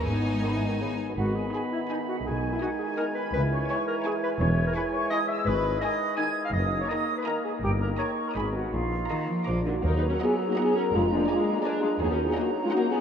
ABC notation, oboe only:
X:1
M:3/4
L:1/8
Q:1/4=166
K:G#m
V:1 name="Oboe"
z6 | b6 | g6- | g6 |
g6 | [K:Ebm] z2 a2 a2 | z2 b2 b2 | z2 b2 c'2 |
z2 b2 =d'2 | z6 | z6 | z6 |]